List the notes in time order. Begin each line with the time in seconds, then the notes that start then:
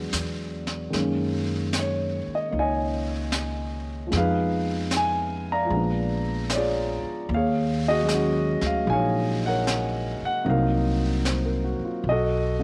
Already playing: F#3 G#3 B3 D4 F#4 G#4 D5
0.13 E2, snare, hi-hat pedal
0.67 snare
0.90 F#2 D#3 G#3 A#3, brush sweep, snare
0.95 C#4
1.73 snare, hi-hat pedal
1.79 C#5
2.27 muted upright bass stroke
2.35 D#5
2.51 C#2 A#3 D#4, brush sweep
2.59 C#5 D#5 G#5
3.32 snare, hi-hat pedal
4.07 F3 G#3
4.12 F2 B3, brush sweep, snare
4.17 D#4 G#4 B4 F5
4.91 snare, hi-hat pedal
4.97 G#5
5.52 D5 F5 A#5
5.65 F3 G#3
5.70 A#1 B3, brush sweep
5.76 D4
6.50 C#5, snare, hi-hat pedal
6.55 F4 G#4 D5
7.03 muted upright bass stroke
7.29 D#2, brush sweep
7.34 G#4 C#5 F5
7.88 F#4 G#4 D#5
8.03 F#3 G#3
8.09 C#4, snare, hi-hat pedal
8.14 F#4
8.61 D2, snare
8.66 F5
8.85 A#1 G#3 A#3 D#4, brush sweep
8.90 C#5 F5 G#5
9.46 A#4 C#5 F#5
9.67 snare, hi-hat pedal
10.22 F#5, muted upright bass stroke
10.45 C2 F#3 A#3 C4 D#4, brush sweep
10.50 A#4 F5
11.25 C5, snare, hi-hat pedal
11.45 A#4
11.64 F#4
11.79 muted upright bass stroke
11.85 F4
12.04 B1, brush sweep
12.09 F#4 A4 D#5
12.59 F#3 A3 C#4